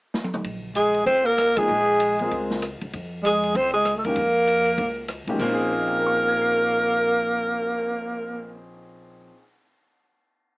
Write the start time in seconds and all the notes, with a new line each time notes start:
0.14 snare
0.24 high tom
0.34 mid tom
0.44 A#1, ride
0.75 G#3 G#4, hi-hat pedal, ride
0.94 ride
1.06 C#2 C4 C5, ride
1.25 A#3 A#4
1.38 cross-stick, hi-hat pedal, ride
1.56 F3 G#3 A#3 D#4 G#4, kick, ride
1.69 A#1
2.00 hi-hat pedal, ride
2.19 G#3 C4 F4 A#4, ride
2.31 C#2, ride
2.50 snare
2.62 cross-stick, hi-hat pedal, ride
2.81 C2, ride
2.93 F2, ride
3.23 G#3 G#4, hi-hat pedal, ride
3.44 ride
3.55 C#2 C4 C5, ride
3.73 G#3 G#4
3.85 cross-stick, hi-hat pedal, ride
3.96 A3 A4
4.04 F2 D#3 G#3 A#3 C#4 G4 A#4, ride
4.16 F2, ride
4.47 hi-hat pedal, ride
4.66 ride
4.78 C#2, ride
5.08 cross-stick, hi-hat pedal, ride
5.27 C2 A#2 D#3 G#3 C#4 G4, ride
5.33 F3
5.38 A#1 A#3 C4 A#4, kick, crash
5.43 C#4
5.48 D#4
5.53 G#4
5.59 cymbal swell
5.72 C5
5.79 D#5
5.87 G5
5.96 A#5
6.06 C#6
6.17 F6
6.28 G#6
6.41 C7